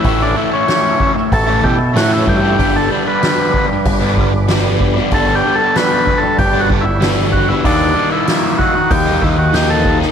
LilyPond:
<<
  \new Staff \with { instrumentName = "Tonewheel organ" } { \time 4/4 \key g \lydian \tempo 4 = 95 << { <a'' e'''>1 | d'''1 | cis'''1 | dis'''1 | } \\ { <e'' cis'''>1 | <d'' b''>1~ | <d'' b''>1 | r1 | } >> }
  \new Staff \with { instrumentName = "Transistor combo organ" } { \time 4/4 \key g \lydian e'16 d'8 cis'4 r16 a'8 g'8 fis'16 e'16 g'8~ | g'16 a'8 b'4 r2 r16 | \tuplet 3/2 { a'8 g'8 a'8 b'4 a'8 g'8 fis'8 e'8~ } e'16 r16 fis'16 e'16 | d'8. e'8. fis'8 g'8 e'16 fis'16 g'16 a'8 r16 | }
  \new Staff \with { instrumentName = "Overdriven electric guitar" } { \time 4/4 \key g \lydian <a, e a cis' e'>8 <e a cis' e'>16 <a cis' e'>16 <a, e a cis' e'>8 <e a cis' e'>8. <a cis' e'>16 <e a cis' e'>8 <a, e a cis' e'>8. <a cis' e'>16 | <g, d g b d'>8 <d g b d'>16 <g b d'>16 <g, d g b d'>8 <d g b d'>8. <g b d'>16 <d g b d'>8 <g, d g b d'>8. <g b d'>16 | <g, d g b d'>8 <d g b d'>16 <g b d'>16 <g, d g b d'>8 <d g b d'>8. <g b d'>16 <d g b d'>8 <g, d g b d'>8. <g b d'>16 | <dis g ais dis'>8 <dis g ais dis'>16 <g ais dis'>16 <dis g ais dis'>8 <dis g ais dis'>8. <g ais dis'>16 <dis g ais dis'>8 <dis g ais dis'>8. <g ais dis'>16 | }
  \new Staff \with { instrumentName = "Picked electric bass" } { \clef bass \time 4/4 \key g \lydian a,,8 r4. a,,8 b,8 a,8 g,8 | g,,8 r4. g,,2 | g,,8 r4. g,,2 | dis,8 r4. dis,2 | }
  \new DrumStaff \with { instrumentName = "Drums" } \drummode { \time 4/4 <hho bd>4 <hho sn>8 bd8 <hho bd>8 bd8 <hho sn>8 bd8 | <hho bd>4 <hho sn>8 bd8 <hho bd>8 bd8 <hho sn>8 bd8 | <hho bd>4 <hho sn>8 bd8 <hho bd>8 bd8 <hho sn>8 bd8 | <hho bd>4 <hho sn>8 bd8 <hho bd>8 bd8 <hho sn>8 bd16 sn16 | }
>>